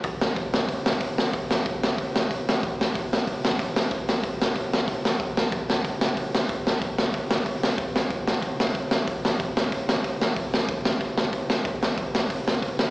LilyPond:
\new DrumStaff \with { instrumentName = "Drums" } \drummode { \time 4/4 \tempo 4 = 186 <hho bd>8 sn8 <hho bd>8 sn16 bd16 <hho bd>8 sn16 bd16 <hho bd>8 sn8 | <hho bd>8 sn8 <hho bd>8 sn16 bd16 <hho bd>8 sn16 bd16 <hho bd>8 sn8 | <hho bd>8 sn8 <hho bd>8 sn16 bd16 <hho bd>8 sn16 bd16 <hho bd>8 sn8 | <hho bd>8 sn8 <hho bd>8 sn16 bd16 <hho bd>8 sn16 bd16 <hho bd>8 sn8 |
<hho bd>8 sn8 <hho bd>8 sn16 bd16 <hho bd>8 sn16 bd16 <hho bd>8 sn8 | <hho bd>8 sn8 <hho bd>8 sn16 bd16 <hho bd>8 sn16 bd16 <hho bd>8 sn8 | <hho bd>8 sn8 <hho bd>8 sn16 bd16 <hho bd>8 sn16 bd16 <hho bd>8 sn8 | <hho bd>8 sn8 <hho bd>8 sn16 bd16 <hho bd>8 sn16 bd16 <hho bd>8 sn8 |
<hho bd>8 sn8 <hho bd>8 sn16 bd16 <hho bd>8 sn16 bd16 <hho bd>8 sn8 | <hho bd>8 sn8 <hho bd>8 sn16 bd16 <hho bd>8 sn16 bd16 <hho bd>8 sn8 | }